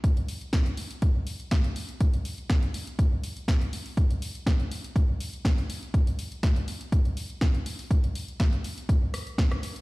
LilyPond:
\new DrumStaff \with { instrumentName = "Drums" } \drummode { \time 4/4 \tempo 4 = 122 <hh bd>16 hh16 hho16 hh16 <hh bd sn>16 hh16 hho16 hh16 <hh bd>8 hho16 hh16 <hh bd sn>16 hh16 hho16 hh16 | <hh bd>16 hh16 hho16 hh16 <hh bd sn>16 hh16 hho16 hh16 <hh bd>8 hho16 hh16 <hh bd sn>16 hh16 hho16 hho16 | <hh bd>16 hh16 hho16 hh16 <hh bd sn>16 hh16 hho16 hh16 <hh bd>8 hho16 hh16 <hh bd sn>16 hh16 hho16 hh16 | <hh bd>16 hh16 hho16 hh16 <hh bd sn>16 hh16 hho16 hh16 <hh bd>16 hh16 hho16 hh16 <hh bd sn>16 hh16 hho16 hho16 |
<hh bd>16 hh16 hho16 hh16 <hh bd sn>16 hh16 hho16 hh16 <hh bd>8 <hho ss>16 hh16 <hh bd sn>16 <hh ss>16 hho16 hh16 | }